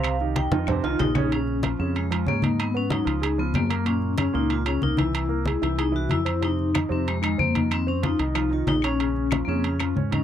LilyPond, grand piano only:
\new Staff \with { instrumentName = "Grand piano" } { \time 4/4 \key bes \minor \tempo 4 = 187 <c c' c''>8 <ees ees' g'>4 <ees ees' f'>8 <c c' c''>8 <ees ees' f'>4 <des des' des''>8 | <des des'>4 <f f'>8 <des des'>4 <f f'>8 <des' des''>8 <ees ees'>8~ | <ees ees'>8 <ces' ces''>8 <ges ges'>8 <f f'>8 <aes aes'>8 <f f'>4 <bes bes'>8 | <bes, bes>4 <des des'>8 <bes, bes>4 <des des'>8 <bes bes'>8 <e e'>8~ |
<e e'>8 <bes bes'>8 <gis gis'>8 <e e'>8 <gis gis'>8 <e e'>4 <c' c''>8 | <c c'>4 <ees ees'>8 <c c'>4 <ees ees'>8 <c' c''>8 <ees ees'>8~ | <ees ees'>8 <c' c''>8 <f f'>8 <ees ees'>8 <f f'>8 <ees ees'>4 <des' des''>8 | <des des'>4 <f f'>8 <des des'>4 <f f'>8 <des' des''>8 <ees ees'>8 | }